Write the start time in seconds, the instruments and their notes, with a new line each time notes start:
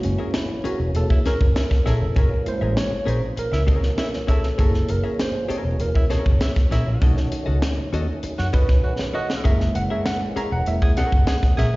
Already playing: tonewheel organ E3 F#3 A#3 C#4, tine electric piano G#3 A#3 E4
0.03 fingered electric bass F#1, tine electric piano C#4, muted hollow-body jazz guitar stroke, closed hi-hat
0.18 hollow-body jazz guitar C#4 G#4 A#4 E5
0.34 tine electric piano E4, snare, closed hi-hat
0.49 muted hollow-body jazz guitar stroke
0.64 hollow-body jazz guitar C#4 G#4 A#4 E5, tine electric piano F#4, muted fingered electric bass stroke, closed hi-hat
0.79 fingered electric bass E1, muted hollow-body jazz guitar stroke
0.94 fingered electric bass E1, tine electric piano A#3 E4 G#4 A4, muted hollow-body jazz guitar stroke, closed hi-hat
1.10 tenor saxophone E4, muted hollow-body jazz guitar stroke, kick
1.25 hollow-body jazz guitar C#4 G#4 A#4 E5, tine electric piano A#4, snare, closed hi-hat
1.41 fingered electric bass F#1, muted hollow-body jazz guitar stroke, kick
1.56 tenor saxophone E4, snare, closed hi-hat
1.71 muted hollow-body jazz guitar stroke, kick, snare
1.86 fingered electric bass A#1, hollow-body jazz guitar C#4 G#4 A#4 E5, tenor saxophone E4, tine electric piano A4, snare, closed hi-hat
2.01 fingered electric bass F1, muted hollow-body jazz guitar stroke
2.16 fingered electric bass F#1, hollow-body jazz guitar C#4 G#4 A#4 E5, tine electric piano A#4, kick, closed hi-hat
2.31 muted hollow-body jazz guitar stroke
2.46 tine electric piano G#3 A#3 E4 C5, muted hollow-body jazz guitar stroke, closed hi-hat
2.61 fingered electric bass A1, hollow-body jazz guitar C#4 G#4 A#4 E5
2.77 tine electric piano C#5, snare, closed hi-hat
2.91 muted hollow-body jazz guitar stroke, muted fingered electric bass stroke
3.05 fingered electric bass A#1, hollow-body jazz guitar C#4 G#4 A#4 E5, tine electric piano C5, closed hi-hat
3.21 muted hollow-body jazz guitar stroke
3.36 tine electric piano A#4, muted hollow-body jazz guitar stroke, muted fingered electric bass stroke, closed hi-hat
3.52 fingered electric bass C#2, tenor saxophone E4, muted hollow-body jazz guitar stroke, snare
3.67 hollow-body jazz guitar C#4 G#4 A#4 E5, kick, closed hi-hat
3.82 muted hollow-body jazz guitar stroke, snare
3.97 tenor saxophone E4, muted hollow-body jazz guitar stroke, snare, closed hi-hat
4.13 snare
4.27 hollow-body jazz guitar C#4 G#4 A#4 E5, tenor saxophone E4, tine electric piano A4, kick, closed hi-hat
4.43 muted hollow-body jazz guitar stroke, snare
4.58 fingered electric bass F#1, tine electric piano A#3 E4 G#4 A4, hollow-body jazz guitar C#4 G#4 A#4 E5, kick, closed hi-hat
4.74 muted hollow-body jazz guitar stroke, snare
4.89 fingered electric bass F#1, tine electric piano A#4, muted hollow-body jazz guitar stroke, closed hi-hat
5.03 hollow-body jazz guitar C#4 G#4 A#4 E5
5.19 tine electric piano C5, snare, closed hi-hat
5.34 muted hollow-body jazz guitar stroke
5.48 hollow-body jazz guitar C#4 G#4 A#4 E5, tine electric piano C#5, muted fingered electric bass stroke, closed hi-hat
5.64 fingered electric bass E1, muted hollow-body jazz guitar stroke
5.80 fingered electric bass E1, tine electric piano A#4, muted hollow-body jazz guitar stroke, closed hi-hat
5.95 tenor saxophone E4, muted hollow-body jazz guitar stroke, kick
6.10 hollow-body jazz guitar C#4 G#4 A#4 E5, tine electric piano C#5, snare, closed hi-hat
6.25 fingered electric bass F#1, muted hollow-body jazz guitar stroke, kick
6.41 tenor saxophone E4, muted hollow-body jazz guitar stroke, snare, closed hi-hat
6.56 kick, snare
6.71 fingered electric bass A#1, hollow-body jazz guitar C#4 G#4 A#4 E5, tenor saxophone E4, snare, closed hi-hat
6.86 fingered electric bass A#1, muted hollow-body jazz guitar stroke
7.01 fingered electric bass B1, tonewheel organ D#3 F#3 A3 C#4, tine electric piano A3 C#4 D#4, hollow-body jazz guitar C#4 F#4 A4 D#5, kick, closed hi-hat
7.16 muted hollow-body jazz guitar stroke, snare
7.32 muted hollow-body jazz guitar stroke, closed hi-hat
7.46 fingered electric bass C#2, hollow-body jazz guitar C#4 F#4 A4 D#5
7.62 snare, closed hi-hat
7.77 muted hollow-body jazz guitar stroke, muted fingered electric bass stroke
7.93 fingered electric bass D#2, hollow-body jazz guitar C#4 F#4 A4 D#5, closed hi-hat
8.08 muted hollow-body jazz guitar stroke
8.23 muted hollow-body jazz guitar stroke, muted fingered electric bass stroke, closed hi-hat
8.38 fingered electric bass F#2, tenor saxophone F#4, muted hollow-body jazz guitar stroke, snare
8.53 hollow-body jazz guitar C#4 F#4 A4 D#5, tine electric piano B4, kick, closed hi-hat
8.68 muted hollow-body jazz guitar stroke, kick, snare
8.84 tenor saxophone F#4, muted hollow-body jazz guitar stroke
8.99 snare
9.13 hollow-body jazz guitar C#4 F#4 A4 D#5, tenor saxophone F#4, tine electric piano D#5
9.28 muted hollow-body jazz guitar stroke, snare
9.44 fingered electric bass F#1, tonewheel organ E3 G#3 A#3, tine electric piano G#3 A#3 E4 E5, hollow-body jazz guitar C#4 G#4 A#4 E5, kick, closed hi-hat
9.60 muted hollow-body jazz guitar stroke, snare
9.75 fingered electric bass F#1, tine electric piano F#5, muted hollow-body jazz guitar stroke, closed hi-hat
9.90 hollow-body jazz guitar C#4 G#4 A#4 E5, tine electric piano E5
10.06 tine electric piano F#5, snare, closed hi-hat
10.21 muted hollow-body jazz guitar stroke
10.36 hollow-body jazz guitar C#4 G#4 A#4 E5, tine electric piano A#5, muted fingered electric bass stroke, closed hi-hat
10.52 fingered electric bass E1, tine electric piano F#5, muted hollow-body jazz guitar stroke
10.66 fingered electric bass E1, tine electric piano G#3 A#3 E4 E5, muted hollow-body jazz guitar stroke, closed hi-hat
10.82 tenor saxophone G#4, muted hollow-body jazz guitar stroke, kick
10.97 hollow-body jazz guitar C#4 G#4 A#4 E5, tine electric piano F#5, snare, closed hi-hat
11.12 fingered electric bass F#1, muted hollow-body jazz guitar stroke, kick
11.27 tenor saxophone G#4, muted hollow-body jazz guitar stroke, snare, closed hi-hat
11.43 kick, snare
11.57 fingered electric bass A#1, hollow-body jazz guitar C#4 G#4 A#4 E5, tenor saxophone G#4, tine electric piano E5, snare, closed hi-hat